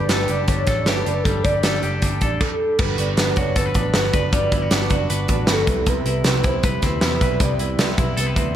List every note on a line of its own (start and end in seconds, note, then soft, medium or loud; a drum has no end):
0.00 1.69 D3 medium
0.00 1.25 G3 medium
0.00 0.48 D4 medium
0.00 0.29 G4 medium
0.00 0.44 B4 loud
0.09 0.26 G1 medium
0.09 0.29 G3 medium
0.09 0.29 A3 medium
0.09 0.28 D4 medium
0.09 0.27 G4 medium
0.09 0.66 A4 medium
0.09 snare loud
0.09 closed hi-hat medium
0.28 0.45 F#1 medium
0.28 0.47 A3 soft
0.28 0.47 D4 soft
0.28 0.48 G4 medium
0.28 closed hi-hat medium
0.47 0.64 G1 medium
0.47 0.67 G3 soft
0.47 0.67 A3 medium
0.47 0.67 D4 medium
0.47 0.65 G4 medium
0.47 0.88 C#5 loud
0.47 kick medium
0.47 closed hi-hat medium
0.66 0.87 A1 medium
0.66 0.86 A3 soft
0.66 0.87 D4 medium
0.66 0.86 G4 medium
0.66 1.63 A4 medium
0.66 kick medium
0.66 snare soft
0.66 closed hi-hat medium
0.86 1.03 G1 medium
0.86 1.06 G3 medium
0.86 1.06 A3 medium
0.86 1.06 D4 medium
0.86 1.04 G4 medium
0.86 1.25 B4 medium
0.86 snare loud
0.86 closed hi-hat medium
1.06 1.22 F#1 medium
1.06 1.24 A3 soft
1.06 1.26 D4 soft
1.06 1.25 G4 medium
1.06 closed hi-hat medium
1.23 1.41 G1 loud
1.23 1.44 G3 medium
1.23 1.45 A3 medium
1.23 1.44 D4 medium
1.23 1.43 G4 medium
1.23 1.43 A4 medium
1.23 kick loud
1.23 closed hi-hat medium
1.44 1.60 G1 medium
1.44 1.62 A3 soft
1.44 1.63 D4 soft
1.44 1.63 G4 medium
1.44 1.80 D5 medium
1.44 kick medium
1.44 closed hi-hat medium
1.62 1.79 G1 medium
1.62 1.82 G3 medium
1.62 1.83 A3 medium
1.62 1.83 D4 medium
1.62 1.81 G4 medium
1.62 2.20 A4 medium
1.62 snare loud
1.62 closed hi-hat medium
1.82 1.99 F#1 medium
1.82 2.01 A3 soft
1.82 2.02 D4 soft
1.82 2.02 G4 medium
1.82 closed hi-hat medium
2.01 2.18 G1 medium
2.01 2.21 G3 medium
2.01 2.21 A3 medium
2.01 2.22 D4 medium
2.01 2.20 G4 medium
2.01 kick medium
2.01 closed hi-hat medium
2.21 2.37 A1 medium
2.21 2.42 A3 soft
2.21 2.41 D4 medium
2.21 2.40 G4 medium
2.21 2.45 A4 medium
2.21 kick medium
2.21 closed hi-hat medium
2.40 2.80 A4 medium
2.40 kick medium
2.40 crash medium
2.78 2.95 G1 loud
2.78 2.98 G3 medium
2.78 2.99 B3 medium
2.78 2.98 D4 medium
2.78 2.97 F#4 medium
2.78 3.17 B4 loud
2.78 kick loud
2.78 crash medium
2.98 3.14 G1 medium
2.98 3.17 B3 soft
2.98 3.18 D4 soft
2.98 3.17 F#4 soft
2.98 closed hi-hat medium
3.17 3.33 G1 medium
3.17 3.37 G3 medium
3.17 3.37 B3 medium
3.17 3.37 D4 medium
3.17 3.35 F#4 medium
3.17 3.38 B4 medium
3.17 snare loud
3.17 closed hi-hat medium
3.36 3.53 F#1 medium
3.36 3.55 B3 soft
3.36 3.56 D4 medium
3.36 3.56 F#4 soft
3.36 3.58 C#5 medium
3.36 kick medium
3.36 closed hi-hat medium
3.55 3.72 G1 medium
3.55 3.75 G3 medium
3.55 3.76 B3 medium
3.55 3.75 D4 medium
3.55 3.73 F#4 medium
3.55 3.66 A4 medium
3.55 3.94 B4 loud
3.55 kick medium
3.55 closed hi-hat medium
3.66 4.12 B4 soft
3.74 3.91 A1 medium
3.74 3.94 B3 soft
3.74 3.95 D4 soft
3.74 3.94 F#4 medium
3.74 kick medium
3.74 closed hi-hat medium
3.94 4.10 G1 medium
3.94 4.14 G3 medium
3.94 4.14 B3 medium
3.94 4.13 D4 medium
3.94 4.11 F#4 medium
3.94 4.30 B4 medium
3.94 snare loud
3.94 closed hi-hat medium
4.13 4.30 F#1 medium
4.13 4.31 B3 soft
4.13 4.32 D4 soft
4.13 4.32 F#4 medium
4.13 5.10 B4 medium
4.13 kick medium
4.13 closed hi-hat medium
4.32 4.49 G1 loud
4.32 4.52 G3 medium
4.32 4.52 B3 medium
4.32 4.52 D4 medium
4.32 4.50 F#4 medium
4.32 4.68 D5 loud
4.32 kick loud
4.32 closed hi-hat medium
4.51 4.68 G1 medium
4.51 4.70 B3 soft
4.51 4.70 D4 medium
4.51 4.62 E4 medium
4.51 4.71 F#4 soft
4.51 kick medium
4.51 closed hi-hat medium
4.62 4.90 F#4 soft
4.70 4.87 G1 loud
4.70 4.90 G3 medium
4.70 4.90 B3 medium
4.70 4.90 D4 medium
4.70 4.88 F#4 medium
4.70 snare loud
4.70 closed hi-hat medium
4.89 5.06 F#1 medium
4.89 5.09 B3 soft
4.89 5.10 D4 medium
4.89 5.09 F#4 medium
4.89 kick medium
4.89 closed hi-hat medium
5.09 5.26 G1 medium
5.09 5.28 G3 medium
5.09 5.29 B3 medium
5.09 5.28 D4 medium
5.09 5.26 F#4 medium
5.09 5.90 B4 medium
5.09 closed hi-hat medium
5.27 5.44 A1 medium
5.27 5.46 B3 soft
5.27 5.47 D4 medium
5.27 5.47 F#4 medium
5.27 kick medium
5.27 closed hi-hat medium
5.46 5.64 G1 medium
5.46 5.66 G3 medium
5.46 5.66 B3 medium
5.46 5.67 D4 medium
5.46 5.66 F#4 medium
5.46 snare loud
5.46 closed hi-hat medium
5.52 5.90 A4 medium
5.66 5.99 C2 medium
5.66 5.86 C3 medium
5.66 5.86 G3 soft
5.66 5.86 B3 soft
5.66 5.86 E4 medium
5.66 kick medium
5.66 closed hi-hat medium
5.86 6.05 C3 medium
5.86 6.06 G3 medium
5.86 6.06 B3 medium
5.86 6.04 E4 medium
5.86 6.25 B4 loud
5.86 kick loud
5.86 closed hi-hat medium
6.05 6.22 C2 medium
6.05 6.25 G3 soft
6.05 6.26 B3 medium
6.05 6.25 E4 medium
6.05 closed hi-hat medium
6.24 6.41 C2 medium
6.24 6.44 C3 medium
6.24 6.45 G3 medium
6.24 6.45 B3 medium
6.24 6.82 C4 medium
6.24 6.44 E4 medium
6.24 6.47 B4 medium
6.24 snare loud
6.24 closed hi-hat loud
6.44 6.60 C2 medium
6.44 6.65 B3 medium
6.44 6.64 E4 medium
6.44 6.66 C5 medium
6.44 kick medium
6.44 closed hi-hat medium
6.48 6.64 G3 soft
6.63 6.79 C2 medium
6.63 6.83 C3 medium
6.63 6.83 G3 medium
6.63 6.84 B3 medium
6.63 6.83 E4 medium
6.63 7.02 B4 loud
6.63 7.21 B4 medium
6.63 kick loud
6.63 closed hi-hat medium
6.82 6.98 D2 medium
6.82 7.03 B3 soft
6.82 7.78 C4 medium
6.82 7.03 E4 medium
6.82 kick medium
6.82 snare soft
6.82 closed hi-hat medium
6.87 7.02 G3 soft
7.01 7.18 E2 medium
7.01 7.22 C3 medium
7.01 7.22 G3 medium
7.01 7.22 B3 medium
7.01 7.20 E4 medium
7.01 7.42 B4 medium
7.01 snare loud
7.01 closed hi-hat medium
7.21 7.37 B1 medium
7.21 7.41 G3 soft
7.21 7.41 B3 medium
7.21 7.40 E4 medium
7.21 8.16 B4 medium
7.21 kick medium
7.21 closed hi-hat medium
7.40 7.56 C2 loud
7.40 7.60 C3 medium
7.40 7.61 G3 medium
7.40 7.61 B3 medium
7.40 7.59 E4 medium
7.40 7.79 D5 loud
7.40 kick loud
7.40 closed hi-hat medium
7.59 7.75 C2 medium
7.59 7.80 B3 soft
7.59 7.79 E4 medium
7.59 closed hi-hat medium
7.64 7.80 G3 soft
7.78 7.94 C2 loud
7.78 7.99 C3 medium
7.78 7.99 G3 medium
7.78 7.99 B3 medium
7.78 8.35 C4 medium
7.78 snare loud
7.78 closed hi-hat medium
7.82 7.97 E4 medium
7.98 8.14 B1 medium
7.98 8.17 G3 medium
7.98 8.18 B3 medium
7.98 8.17 E4 medium
7.98 kick medium
7.98 closed hi-hat medium
8.17 8.33 C2 medium
8.17 8.37 C3 medium
8.17 8.37 G3 medium
8.17 8.37 B3 medium
8.17 8.35 E4 medium
8.17 8.27 A4 medium
8.17 closed hi-hat medium
8.27 8.56 B4 medium
8.36 8.52 D2 medium
8.36 8.55 G3 medium
8.36 8.56 B3 medium
8.36 8.56 C4 medium
8.36 8.55 E4 medium
8.36 kick medium
8.36 closed hi-hat medium